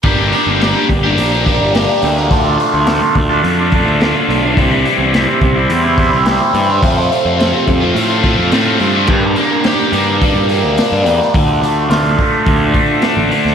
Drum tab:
CC |----------------|----------------|----------------|----------------|
HH |o-o-o-o-o-o-o-o-|o-o-o-o-o-o-o-o-|o-o-o-o-o-o-o-o-|o-o-o-o-o-o-o-o-|
SD |----o-------o--o|----o-------o---|----o-------o---|----o-------o---|
BD |o-----o---o-----|o-----o---o-----|o-----o---o-----|o-----o---o-----|

CC |x---------------|----------------|
HH |--o-o-o-o-o-o-o-|o-o-o-o-o-o-o-o-|
SD |----o-------o--o|----o-------o--o|
BD |o-------o-------|o-----o-o-o-----|